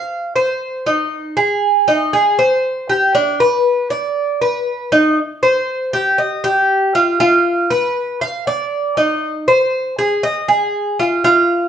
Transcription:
Already playing: F5
0.36 C5
0.86 D#4
1.37 G#4
1.88 D#4
2.13 G#4
2.39 C5
2.90 G4
3.15 D4
3.40 B4
3.90 D5
4.42 B4
4.92 D#4
5.43 C5
5.93 G4
6.18 D#5
6.44 G4
6.95 F4
7.20 F4
7.70 B4
8.21 F5
8.47 D5
8.97 D#4
9.48 C5
9.99 G#4
10.23 D#5
10.48 G#4
11.00 F4
11.24 F4

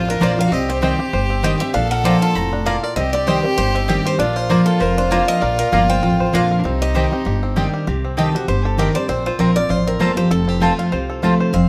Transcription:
Already playing: A1 F2 F4 A#4 C5
0.08 D4 A#4
0.20 A#1 F3 A#3 D4 F4 C5 D5 A#5
0.37 D4 F4 A#4 F5
0.46 F#4
0.52 C2 C3 C4 G4 D#5
0.69 G4 C5
0.81 D#3 G3 C4 G4 C5 D#5 G5
0.99 C4 G4
1.13 G1 G2 C5
1.30 C4
1.43 D#3 G3 C4 G4 C5 D#5 G5
1.60 C4 G4 E5
1.74 A#1 A#2 D4 A4 F5
1.91 A#4 F#5
2.04 F3 A#3 D4 F4 C5 D5 G5 A#5
2.22 F4 A5
2.35 F1 A2 A#5
2.53 D4
2.66 A#2 A#3 F4 D5 F5 A#5
2.83 A#4 D5
2.96 C2 C3 C4 G4 D#5
3.13 G4 D5
3.27 D#3 G3 C4 G4 C5 D#5 G5
3.44 C4 G4 A#4
3.58 G1 G2 G4 C5
3.75 C4 D#4
3.88 D#3 G3 C4 G4 D#5 G5
4.05 G4 C5
4.19 A#1 A#2 D4 F4 D5
4.36 A#4 C5
4.49 F3 A#3 D4 F4 A#4 C5 D5 A#5
4.66 A4 A#4
4.80 F1 F2 A#4 C5
4.98 D4 C5
5.10 F3 A#3 D4 F4 C5 D5 A#5
5.28 A#4 D#5
5.42 A#1 A#2 A#4 D5
5.59 A#4
5.72 G1 F3 A#3 D4 F4 A#4 D5 A#5
5.90 C5 G5
6.03 A1 F2 A#4
6.20 C5
6.33 A#1 F3 A#3 D4 F4 D5 F5 A#5
6.51 A#4
6.59 D4
6.64 C2 C3 C4 D#4
6.82 G4 D#5
6.94 D#3 G3 C4 G4 C5 D#5 G5
7.11 C4 G4
7.25 G1 G2 G4
7.43 C4
7.56 D#3 G3 C4 G4 D#5 G5
7.74 G4
7.87 C2 C3 G4
8.04 C4
8.17 D#3 G3 C4 G4 A4 D#5 G5
8.34 C4 F#4 G4
8.48 G1 G2 G4 C5
8.65 G4 A4
8.78 D#3 G3 C4 G4 A#4 D#5 G5
8.95 C4 G4 C5 D5
9.09 A#1 A#2 C4 C5
9.26 F4 C5
9.39 A#1 F3 A#3 C4 F4 A#4 C5 A#5
9.55 C4 F4 A#4 D5
9.69 A1 F2 F4 C5
9.87 C4 A#4
9.99 G1 F3 A#3 C4 F4 A4 A#4 C5 A#5
10.16 C4 F4 G4 C5
10.30 F1 F2 A4
10.48 C4 G4
10.60 F3 A3 C4 F4 A4 C5 A5
10.79 F4
10.92 C2 C3 C5
11.10 A4
11.22 F3 A3 C4 F4 C5 A5
11.40 C5
11.53 F1 F2 C4 F5

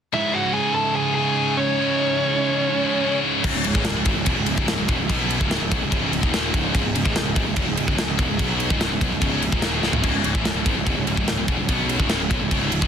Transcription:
0.13 C#2 G#2 C#3 G#3 D#4 E4 E5
0.33 F#4 F#5
0.54 G#4 G#5
0.74 A4 A5
0.96 G#4 G#5
1.14 G#2 C#3 G#4 G#5
1.19 C#2
1.37 C#2 G#2 C#3
1.57 C#4 C#5
1.79 C#2 G#2 C#3
2.81 C#2 G#2 C#3
3.01 C#2 G#2 C#3
3.44 C#1 C#2 G#2 C#3 G#3 D#4 G#4, kick, crash
3.54 C#1 C#2 G#2
3.64 C#1 C#2 G#2, ride
3.75 A1 A2 E3, kick
3.84 C#1 C#2 G#2, snare, ride
3.96 C#1 C#2 G#2
4.05 G#1 G#2 D#3, kick, ride
4.15 C#1 C#2 G#2
4.25 E1 E2 B2, kick, ride
4.36 C#1 C#2 G#2
4.46 C#1 C#2 G#2, ride
4.57 C#1 C#2 G#2, kick
4.67 C#1 C#2 G#2, snare, ride
4.77 C#1 C#2 G#2
4.88 E1 E2 B2, kick, ride
4.98 C#1 C#2 G#2
5.09 B1 B2 F#3 B3, kick, ride
5.31 ride
5.39 C#1 C#2 G#2 C#3, kick
5.51 snare, ride
5.60 C#1 C#2 G#2
5.71 B1 B2 F#3, kick, ride
5.81 C#1 C#2 G#2
5.90 C#1 C#2 G#2 C#3, kick, ride
6.12 C#1 C#2 G#2, ride
6.21 D#1 D#2 A#2 D#3, kick
6.34 snare, ride
6.53 C#1 C#2 G#2 C#3, kick, ride
6.74 C#1 C#2 G#2, kick, ride
6.84 C#1 C#2 G#2
6.95 C#1 C#2 G#2, ride
7.04 A1 A2 E3, kick
7.15 C#1 C#2 G#2, snare, ride
7.25 C#1 C#2 G#2
7.35 G#1 G#2 D#3, kick, ride
7.46 C#1 C#2 G#2
7.56 E1 E2 B2, kick, ride
7.67 C#1 C#2 G#2
7.77 C#1 C#2 G#2, ride
7.87 C#1 C#2 G#2, kick
7.98 C#1 C#2 G#2, snare, ride
8.08 C#1 C#2 G#2
8.17 E1 E2 B2, kick, ride
8.29 C#1 C#2 G#2
8.39 B1 B2 F#3 B3, kick, ride
8.60 ride
8.70 C#1 C#2 G#2 C#3, kick
8.81 snare, ride
8.90 C#1 C#2 G#2
9.01 B1 B2 F#3, kick, ride
9.12 C#1 C#2 G#2
9.21 C#1 C#2 G#2 C#3, kick, ride
9.42 C#1 C#2 G#2, ride
9.52 D#1 D#2 A#2 D#3, kick
9.62 snare, ride
9.83 C#1 C#2 G#2 C#3, snare
9.93 floor tom
10.03 C#1 C#2 G#2 C#4, kick, crash
10.15 C#1 C#2 G#2
10.24 C#1 C#2 G#2, ride
10.35 A1 A2 E3, kick
10.45 C#1 C#2 G#2, snare, ride
10.56 C#1 C#2 G#2
10.66 G#1 G#2 D#3, kick, ride
10.76 C#1 C#2 G#2
10.86 E1 E2 B2, kick, ride
10.97 C#1 C#2 G#2
11.07 C#1 C#2 G#2, ride
11.16 C#1 C#2 G#2, kick
11.26 C#1 C#2 G#2, snare, ride
11.38 C#1 C#2 G#2
11.48 E1 E2 B2, kick, ride
11.58 C#1 C#2 G#2
11.68 B1 B2 F#3 B3, kick, ride
11.89 ride
11.99 C#1 C#2 G#2 C#3, kick
12.10 snare, ride
12.20 C#1 C#2 G#2
12.30 B1 B2 F#3, kick, ride
12.41 C#1 C#2 G#2
12.51 C#1 C#2 G#2 C#3, kick, ride
12.71 C#1 C#2 G#2, ride
12.81 D#1 D#2 A#2 D#3, kick

